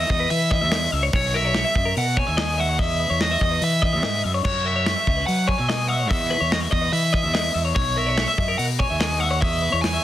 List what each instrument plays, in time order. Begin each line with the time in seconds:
Already playing: overdriven electric guitar D#5
0.10 fingered electric bass E2, clean electric guitar D#5, overdriven electric guitar D#5, kick
0.20 clean electric guitar B4
0.30 fingered electric bass E3, overdriven electric guitar E5, open hi-hat
0.51 clean electric guitar D#5, kick
0.61 fingered electric bass E2, clean electric guitar E5
0.72 clean electric guitar D#5, snare, open hi-hat
0.92 fingered electric bass C#2, clean electric guitar E5
1.03 clean electric guitar C#5
1.13 fingered electric bass B1, clean electric guitar C#5, overdriven electric guitar C#5, kick, open hi-hat
1.34 clean electric guitar A#4, overdriven electric guitar E5
1.45 clean electric guitar C#5
1.55 snare, open hi-hat
1.65 clean electric guitar E5
1.75 fingered electric bass F#2, clean electric guitar D#5, kick
1.85 clean electric guitar A#4
1.97 fingered electric bass B2, overdriven electric guitar F#5, open hi-hat
2.17 clean electric guitar C#5, overdriven electric guitar G#5, kick
2.27 fingered electric bass D#2, clean electric guitar E5
2.37 clean electric guitar D#5, snare, open hi-hat
2.58 clean electric guitar E5, overdriven electric guitar F#5
2.69 clean electric guitar C#5
2.79 fingered electric bass E2, clean electric guitar D#5, overdriven electric guitar E5, kick, open hi-hat
3.00 clean electric guitar B4
3.10 fingered electric bass E2, clean electric guitar C#5
3.21 overdriven electric guitar D#5, snare, open hi-hat
3.31 clean electric guitar E5
3.41 fingered electric bass E2, clean electric guitar D#5, overdriven electric guitar D#5, kick
3.51 clean electric guitar B4
3.62 fingered electric bass E3, overdriven electric guitar E5, open hi-hat
3.82 clean electric guitar D#5, kick
3.93 fingered electric bass E2, clean electric guitar E5
4.03 fingered electric bass G#2, clean electric guitar D#5, snare, open hi-hat
4.24 fingered electric bass F#2, clean electric guitar E5
4.34 clean electric guitar C#5
4.44 fingered electric bass F#2, clean electric guitar C#5, overdriven electric guitar C#5, kick, crash
4.65 clean electric guitar A#4, overdriven electric guitar E5
4.76 clean electric guitar C#5
4.86 snare, open hi-hat
4.96 clean electric guitar E5
5.06 fingered electric bass C#2, clean electric guitar D#5, kick
5.17 clean electric guitar B4
5.27 fingered electric bass F#3, overdriven electric guitar F#5, open hi-hat
5.48 clean electric guitar C#5, overdriven electric guitar G#5, kick
5.58 fingered electric bass B2, clean electric guitar E5
5.69 clean electric guitar D#5, snare, open hi-hat
5.89 clean electric guitar E5, overdriven electric guitar F#5
5.99 clean electric guitar C#5
6.09 fingered electric bass E2, clean electric guitar D#5, overdriven electric guitar E5, kick, open hi-hat
6.31 clean electric guitar B4
6.40 fingered electric bass E2, clean electric guitar C#5
6.52 overdriven electric guitar D#5, snare, open hi-hat
6.61 clean electric guitar E5
6.71 fingered electric bass E2, clean electric guitar D#5, overdriven electric guitar D#5, kick
6.81 clean electric guitar B4
6.92 fingered electric bass E3, overdriven electric guitar E5, open hi-hat
7.13 clean electric guitar D#5, kick
7.23 fingered electric bass E2, clean electric guitar E5
7.34 clean electric guitar D#5, snare, open hi-hat
7.54 fingered electric bass E2, clean electric guitar E5
7.65 clean electric guitar C#5
7.75 fingered electric bass B1, clean electric guitar C#5, overdriven electric guitar C#5, kick, open hi-hat
7.96 clean electric guitar A#4, overdriven electric guitar E5
8.07 clean electric guitar C#5
8.18 snare, open hi-hat
8.28 clean electric guitar E5
8.38 fingered electric bass F#2, clean electric guitar D#5, kick
8.48 clean electric guitar A#4
8.58 fingered electric bass B2, overdriven electric guitar F#5, open hi-hat
8.79 clean electric guitar C#5, overdriven electric guitar G#5, kick
8.90 fingered electric bass D#2, clean electric guitar E5
9.00 clean electric guitar D#5, snare, open hi-hat
9.20 clean electric guitar E5, overdriven electric guitar F#5
9.31 clean electric guitar C#5
9.41 fingered electric bass E2, clean electric guitar D#5, overdriven electric guitar E5, kick, open hi-hat
9.62 clean electric guitar B4
9.72 fingered electric bass E2, clean electric guitar C#5
9.82 overdriven electric guitar G#5, snare, open hi-hat
9.94 clean electric guitar E5